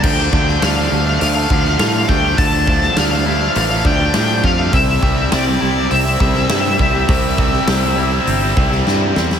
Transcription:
<<
  \new Staff \with { instrumentName = "Lead electric guitar" } { \time 4/4 \key d \minor \tempo 4 = 102 g''4 f''4 f''4. g''8 | a''4 f''4 f''8 g''4 f''8 | e''4 d''4 e''2~ | e''2. r4 | }
  \new Staff \with { instrumentName = "Clean electric guitar" } { \time 4/4 \key d \minor d4 a4 a8 d8 f8 a8 | d4 a8 e'8 a8 d8 f8 a8 | c4 c'8 e'8 c'8 c8 g8 c'8 | c4 c'8 e'8 c'8 c8 g8 c'8 | }
  \new Staff \with { instrumentName = "Distorted electric guitar" } { \time 4/4 \key d \minor <d f a d'>8 <d f a d'>8 <d f a d'>16 <f a d'>16 <d f a d'>16 <f a d'>8 <f a d'>16 <d f a d'>16 <f a d'>16 <d f a d'>8 <d f a d'>16 <f a d'>16 | <d f a d'>8 <d f a d'>8 <d f a d'>16 <f a d'>16 <d f a d'>16 <f a d'>8 <f a d'>16 <d f a d'>16 <f a d'>16 <d f a d'>8 <d f a d'>16 <f a d'>16 | <c g c' e'>8 <c g c' e'>8 <c g c' e'>16 <g c' e'>16 <c g c' e'>16 <g c' e'>8 <g c' e'>16 <c g c' e'>16 <g c' e'>16 <c g c' e'>8 <c g c' e'>16 <g c' e'>16 | <c g c' e'>8 <c g c' e'>8 <c g c' e'>16 <g c' e'>16 <c g c' e'>16 <g c' e'>8 <g c' e'>16 <c g c' e'>16 <g c' e'>16 <c g c' e'>8 <c g c' e'>16 <g c' e'>16 | }
  \new Staff \with { instrumentName = "Fingered electric bass" } { \clef bass \time 4/4 \key d \minor d,8 d,8 d,8 d,8 d,8 d,8 a,8 d,8 | d,4 d,4 a,,8 d,8 a,8 f,8 | c,8 c,8 c,8 c,8 c,8 c,8 g,8 c,8 | c,4 c,4 g,,8 c,8 g,8 e,8 | }
  \new DrumStaff \with { instrumentName = "Drums" } \drummode { \time 4/4 <cymc bd>8 bd16 sn16 <hho sn>4 hho8 bd16 sn16 <hho sn>8 bd8 | <hho bd>8 bd16 sn16 <hho sn>4 hho8 bd8 <hho sn>8 bd8 | <hho bd>8 bd8 <hho sn>4 hho8 bd16 sn16 <hho sn>8 bd8 | <hho bd>8 bd16 sn16 <hho sn>4 hho8 bd16 sn16 sn8 sn16 sn16 | }
>>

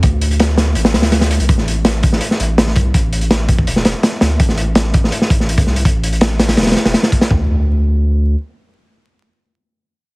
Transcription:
<<
  \new Staff \with { instrumentName = "Sub bass" } { \clef bass \time 4/4 \key c \major \tempo 4 = 165 d,2 a,,8 d,4~ d,16 c,16 | a,,2 r8 a,,4 c,8 | a,,2 e,,8 e,,16 r8. d,8 | a,,2 r8 a,,4 c,8 |
a,,2 e,,8 r16 e,,16 r4 | d,2. r4 | r1 | }
  \new DrumStaff \with { instrumentName = "Drums" } \drummode { \time 4/4 <hh bd>8 hh16 hh16 <hh sn>8 <hh sn>8 hh16 <hh sn>16 <hh sn>16 <hh sn>16 <hh sn>16 <hh sn>16 hh16 hh16 | <hh bd>16 sn16 hh8 <hh sn>8 <hh bd>16 sn16 hh16 sn16 hh8 <hh sn>16 sn16 <hh bd>8 | <hh bd>8 hh16 hh16 <hh sn>8 <hh bd>16 bd16 hh16 sn16 <hh sn>8 <hh sn>8 <hh sn>8 | <hh bd>16 sn16 hh8 <hh sn>8 <hh bd>16 sn16 hh16 sn16 <hh bd>16 sn16 hh16 <hh bd>16 sn16 hh16 |
<hh bd>8 hh16 hh16 <hh sn>8 <hh sn>16 <hh sn>16 <hh sn>32 <hh sn>32 <hh sn>32 <hh sn>32 <hh sn>16 <hh sn>16 <hh sn>16 <hh sn>16 <hh bd>16 <hh sn>16 | <bd tomfh>4 r4 r4 r4 | r4 r4 r4 r4 | }
>>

